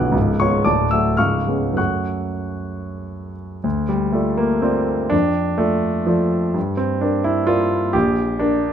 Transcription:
grand piano
Already playing: B0 B1 D3 B3 F#4 C#5 D5 E5 F#5 B5 C#6 D6 E6 F#6
0.12 C#2
0.16 C#1
0.40 C#3 B3 F4 C#5 C#6
0.65 D1 D2 D5 A5 D6
0.91 F#3 A3 F#4 E5 E6
1.17 C#1 C#2 F5 C#6 F6
1.47 G#3 B3 C#4
1.73 F#2 F#3 A3 C#4
1.77 F#5 C#6 F#6
3.64 D2
3.89 G3
4.12 A3 F4 A4 D5
4.37 A#3
4.62 C4 F4 A4 D5
5.10 F2 D4
5.58 A3 F4 A4 D5
6.06 F3 F4 A4 D5
6.54 G2
6.77 C4
7.01 D4 A#4 D5
7.24 E4
7.47 F4 A#4 D5
7.93 A#1 G4
8.39 D4 A#4 D5

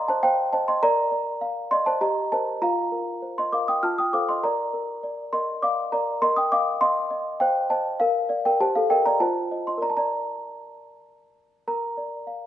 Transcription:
celesta
Already playing: A#4 D5 D#5 F5 G5 A#5 C6 D6 D#6
0.08 C5 A5
0.23 C5 F5 G5
0.53 C5 D#5 A5
0.68 D#5 C6
0.83 A#4 D5 A#5
1.12 D5
1.41 F5
1.71 D5 D#5 C6
1.86 C5 A5
2.01 G4 D#5 A#5
2.32 A#4 C5 D#5 A5
2.62 F4 F5 A#5
2.92 A#4
3.22 C5
3.38 D#5 C6
3.52 A#4 F5 D6
3.68 G5 D#6
3.83 F4 A5 F6
3.98 G5 D#6
4.13 A4 C5 F5 D6
4.29 D#5 C6
4.43 A#4 D5 A#5
4.73 A#4
5.03 D5
5.33 A#4 D#5 C6
5.62 D5 F5 D6
5.92 A#4 D5 A#5
6.22 A#4 D#5 C6
6.36 G5 D#6
6.52 D#5 F5 D6
6.81 D#5 F5 C6
7.11 D#5
7.40 C5 F5 G5
7.70 C5 D#5 A5
8.00 A#4 F5
8.29 D5 F5
8.45 A#4 G5
8.60 G4 C5 A5
8.75 A4 F5
8.90 A#4 D#5 G5
9.05 D5 A#5
9.20 F4 C5 A5
9.51 C5 D#5
9.67 D#5 C6
9.78 A#4 D5
9.82 A#5
9.90 A5
9.97 D5 A#5
11.68 A#4 A#5
11.97 D5
12.27 F5

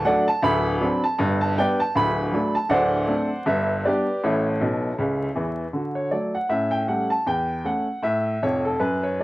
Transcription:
upright piano
0.05 F#3 A3 D4 A4 D5 F#5
0.28 A5
0.43 D1 D2 B5
0.80 F#3 C4 D4
1.04 A5
1.18 G1 G2
1.41 A5
1.58 G3 B3 D4 B4 D5 G5
1.80 A5
1.95 D1 D2 B5
2.32 F#3 A3 D4
2.55 A5
2.69 D1 D2 C5 D5 F#5
3.07 A3 C4 D4
3.46 G1 G2 E5
3.85 G3 B3 D4 G4 B4 D5
4.24 A1 A2 E4 A4 C#5
4.61 B1 B2
4.98 C#2 C#3
5.35 E2 E3
5.73 D3 F#4
5.95 C#5
6.11 F#3 A3 D5
6.35 F#5
6.49 A2 C#4 E5
6.71 G5
6.88 G3 A3 C#4 F#5
7.10 A5
7.26 E2 G5
7.64 A3 C#4 F#5
8.03 A2 E5
8.43 F1 F2 C#5
8.65 A4
8.80 F#2 B4
9.03 C#5
9.20 A3 D4 D5

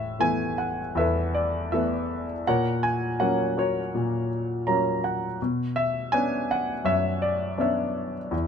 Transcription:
grand piano
Already playing: A2 E5
0.19 E3 A3 B3 G#5
0.58 F#5
0.95 E2 A4 B4 E5
1.34 D5
1.72 E3 A3 B3 A4 B4 E5
2.47 A#2 A#4 C#5 F#5
2.83 G#5
3.20 F#3 A#3 C#4 F#5
3.57 F#4 A#4 C#5
3.95 A#2
4.67 F#3 A#3 C#4 A#5
5.04 F#5
5.42 B2
5.76 E5
6.12 B3 C#4 D4 G#5
6.51 F#5
6.84 F#2 C#5 E5
7.22 D5
7.58 B3 C#4 D4 C#5 E5
8.31 E2

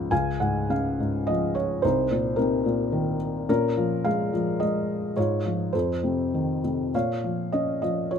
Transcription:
felt piano
Already playing: C#2 G#2 C#3 F3 F4 C#5
0.11 C#2 F5 G#5
0.40 G#2 F#5
0.70 C#3 F5
1.00 G#2
1.27 F3 D#5
1.55 C#5
1.82 C2 D#4 C5
2.11 A#2
2.36 C3 D#4 A#4
2.65 A#2
2.92 D#3
3.49 A#2 C#4 A#4
3.77 F3
4.04 G#3 F5
4.33 F3
4.60 G#3 D#5
5.16 G#2 F4 C#5
5.46 F3
5.73 F2 A4 C5
6.04 C3
6.34 D#3
6.64 C3
6.94 A#2 C#5 F5
7.24 F3
7.52 C#4 D#5
7.82 F3 D#5
8.11 F4 C#5

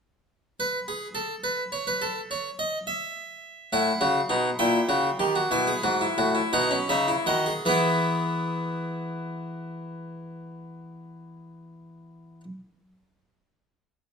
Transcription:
harpsichord
0.60 B4
0.88 G#4
1.15 A4
1.44 B4
1.72 C#5
1.87 B4
2.02 A4
2.31 C#5
2.59 D#5
2.87 E5
3.73 A2 E4 F#5
4.01 C#3 F#4
4.29 B2 D#4
4.59 A#2 E4 G5
4.89 C#3 F#4
5.20 D#3 G4
5.36 F#4
5.51 B2 E4 G#5
5.67 G#4
5.83 G#2 F#4
6.01 E4
6.18 A2 F#4
6.35 E4
6.53 B2 D#4 F#5
6.71 C#4
6.89 C#3 D#4 E5
7.08 E4
7.26 D#3 F#4 D#5
7.46 G#4
7.66 E3 B3 E4 G#4 B4

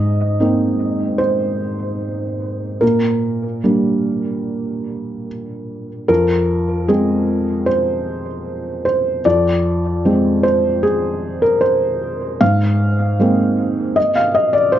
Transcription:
felt piano
Already playing: G#2 D#5
0.40 A#3 C4 D#4
1.18 C5
2.81 A#2 A#4
3.64 G3 A#3 D4
6.08 F2 A#4
6.88 G#3 C4 G#4
7.66 C5
8.85 C5
9.25 F2 D5
10.05 G#3 C4
10.43 C5
10.83 G#4
11.42 A#4
11.61 C5
12.41 G#2 F5
13.19 G#3 A#3 C4
13.96 D#5
14.16 F5
14.35 D#5
14.53 D5
14.72 C5

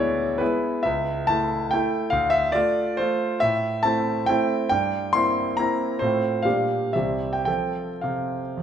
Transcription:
grand piano
Already playing: D2 G#3 B3 E4 C#5 D5 E5
0.38 G#3 B3 E4 B4
0.83 C#2 E5
1.27 A3 E4 A5
1.71 A3 E4 G5
2.10 D2 F5
2.30 E5
2.52 A3 F4 D5
2.97 A3 F4 C5
3.40 A2 E5
3.83 A3 C4 E4 A5
4.26 A3 C4 E4 G5
4.69 G2 G5
5.13 A#3 C4 E4 C6
5.57 A#3 C4 E4 A#5
5.99 A2 A3 C4 F4 C5
6.42 A#2 G3 D4 G4 F5
6.93 C2 G3 C4 G4 E5
7.33 G5
7.45 F3 C4 A4 G5
8.01 C3 F5
8.57 F2

